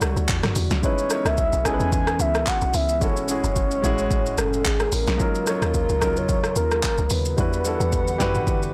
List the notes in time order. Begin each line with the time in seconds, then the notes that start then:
Already playing: D3 G3 D4 E4 F#4 G4 A4 B4 C#5
0.01 C#2, cross-stick, shaker
0.16 D2, shaker
0.28 E2, kick, clap, shaker
0.43 cross-stick, snare, mid tom, shaker
0.55 E2, open hi-hat, shaker
0.71 C#2, snare, shaker
0.82 E3 G#3 B3 C#4 D#4 E4 B4 C#5, kick, shaker
0.98 shaker
1.09 G#3 C#4 D#4 E4 C#5, cross-stick, shaker
1.25 C#2 E5, cross-stick, shaker
1.37 kick, shaker
1.53 B1, shaker
1.63 G#3 C#4 D#4 E4 A4 G#5, kick, cross-stick, shaker
1.74 B4
1.80 E2, shaker
1.92 G#5, kick, shaker
2.07 cross-stick, shaker
2.19 C#2 E5, shaker
2.35 cross-stick, shaker
2.46 F#5, kick, clap, shaker
2.61 B1, shaker
2.74 C#2 E5, open hi-hat, shaker
2.89 shaker
3.00 F#1 A2 G#3 C#4 E4 F#4 A4 C#5, kick, shaker
3.17 shaker
3.28 G#3 C#4 E4 F#4 G#4, shaker
3.44 F#1, shaker
3.56 kick, shaker
3.71 shaker
3.82 A1 G#3 C#4 E4 F#4 G#4, kick, shaker
3.98 shaker
4.11 kick, shaker
4.26 shaker
4.38 F#1 A4, cross-stick, shaker
4.53 shaker
4.65 G#1 G#4, kick, clap, shaker
4.80 cross-stick, shaker
4.92 A1 A#4, open hi-hat, shaker
5.07 B1, snare, shaker
5.18 C#3 F#3 C#4 D#4 F4 A#4, kick, shaker
5.35 shaker
5.46 F#3 C#4 D#4 F4 C#5, cross-stick, shaker
5.62 D#2, cross-stick, shaker
5.74 A#4, kick, shaker
5.89 C#2, shaker
6.00 F#3 C#4 D#4 F4 A#4, kick, cross-stick, shaker
6.16 E2 C#5, shaker
6.29 kick, shaker
6.44 cross-stick, shaker
6.56 D#2 A#4, shaker
6.71 cross-stick, shaker
6.83 kick, clap, shaker
6.98 C#2, shaker
7.10 D#2 B4, open hi-hat, shaker
7.25 shaker
7.37 E2 D3 E3 G3 D4 E4 F#4 B4 F#5, kick, shaker
7.53 shaker
7.64 G3 D4 E4 F#4 A4, shaker
7.80 E2, shaker
7.92 kick, shaker
8.08 shaker
8.18 F#2 D4 E4 F#4 G4 B4, kick, snare, shaker
8.35 mid tom, shaker
8.47 kick, shaker
8.63 shaker